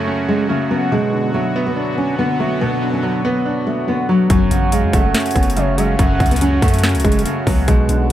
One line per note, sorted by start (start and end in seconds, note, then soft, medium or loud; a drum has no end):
0.00 0.29 F#2 loud
0.00 0.49 C#3 medium
0.00 0.89 C#3 medium
0.00 0.71 F#3 medium
0.00 7.64 F#3 medium
0.00 0.94 A3 loud
0.00 0.08 C#4 medium
0.00 0.89 C#4 medium
0.00 7.64 F#4 medium
0.08 0.92 C#4 medium
0.28 0.47 G#3 loud
0.49 0.92 C#3 medium
0.49 0.68 A3 medium
0.71 0.92 F#3 medium
0.71 0.89 B3 medium
0.92 1.97 B2 medium
0.92 4.27 D3 medium
0.92 1.32 G#3 loud
0.92 4.27 B3 medium
1.13 2.18 D3 medium
1.34 2.38 F#3 medium
1.34 1.65 A3 medium
1.56 2.61 B3 loud
1.67 1.96 B3 medium
1.76 2.82 D4 medium
1.98 2.16 C#4 medium
2.19 2.80 D3 medium
2.19 2.37 B3 medium
2.39 3.01 F#3 medium
2.39 2.58 A3 medium
2.61 3.67 B2 medium
2.61 2.91 B3 loud
2.82 3.87 D3 medium
2.93 3.02 C#4 medium
3.03 4.07 F#3 medium
3.03 3.22 D4 medium
3.24 3.43 B3 medium
3.24 4.30 B3 loud
3.46 4.30 D4 medium
3.67 3.85 A3 medium
3.88 4.30 D3 medium
3.88 4.06 B3 medium
4.09 4.27 F#3 medium
4.09 4.30 F#3 medium
4.30 4.50 F#1 loud
4.30 5.36 F#2 medium
4.30 7.65 C#3 medium
4.30 4.70 F#3 loud
4.30 7.65 C#4 medium
4.30 kick loud
4.30 closed hi-hat medium
4.51 4.85 A1 loud
4.51 5.55 C#3 medium
4.51 4.71 F#5 medium
4.51 closed hi-hat medium
4.72 5.76 F#3 medium
4.72 5.03 G#3 medium
4.72 4.92 F5 loud
4.72 closed hi-hat medium
4.84 4.93 F#2 loud
4.93 5.14 F#1 loud
4.93 5.99 A3 loud
4.93 5.13 F#5 loud
4.93 kick loud
4.93 closed hi-hat medium
5.05 5.34 A3 medium
5.15 6.21 C#4 medium
5.15 snare loud
5.15 closed hi-hat medium
5.20 closed hi-hat medium
5.26 closed hi-hat medium
5.31 closed hi-hat medium
5.36 5.96 F#1 loud
5.36 5.54 B3 medium
5.36 kick loud
5.36 closed hi-hat medium
5.43 closed hi-hat medium
5.50 closed hi-hat medium
5.57 6.18 C#3 loud
5.57 5.75 A3 medium
5.57 5.77 C#5 medium
5.57 closed hi-hat medium
5.78 6.40 F#3 medium
5.78 5.96 G#3 medium
5.78 5.98 F5 medium
5.78 closed hi-hat medium
5.99 6.19 F#1 loud
5.99 7.05 F#2 loud
5.99 6.30 A3 loud
5.99 6.80 F#5 loud
5.99 kick loud
5.99 closed hi-hat medium
6.20 6.61 C#2 loud
6.20 7.24 C#3 medium
6.20 kick loud
6.20 closed hi-hat soft
6.26 closed hi-hat medium
6.31 6.40 B3 medium
6.31 closed hi-hat medium
6.36 closed hi-hat medium
6.41 7.45 F#3 medium
6.41 6.60 C#4 medium
6.41 closed hi-hat medium
6.62 6.96 F#2 loud
6.62 6.81 A3 medium
6.62 7.68 A3 loud
6.62 kick loud
6.62 closed hi-hat medium
6.68 closed hi-hat medium
6.74 closed hi-hat medium
6.79 closed hi-hat medium
6.84 7.68 C#4 medium
6.84 snare loud
6.84 closed hi-hat soft
6.89 closed hi-hat medium
6.95 7.04 C#2 loud
6.95 closed hi-hat medium
7.00 closed hi-hat medium
7.05 7.25 F#1 loud
7.05 7.23 G#3 loud
7.05 kick loud
7.05 closed hi-hat medium
7.12 closed hi-hat medium
7.19 closed hi-hat medium
7.25 7.68 C#3 medium
7.25 7.44 A3 medium
7.25 closed hi-hat medium
7.47 7.67 C#2 loud
7.47 7.68 F#3 medium
7.47 7.65 B3 medium
7.47 kick loud
7.47 open hi-hat medium
7.68 7.88 B1 loud
7.68 8.12 B2 loud
7.68 8.12 D3 medium
7.68 8.12 F#3 medium
7.68 8.08 G#3 loud
7.68 8.12 B3 medium
7.68 8.12 F#4 medium
7.68 kick loud
7.68 closed hi-hat medium
7.89 8.12 B1 loud
7.89 8.12 D3 medium
7.89 8.09 F#5 medium
7.89 closed hi-hat medium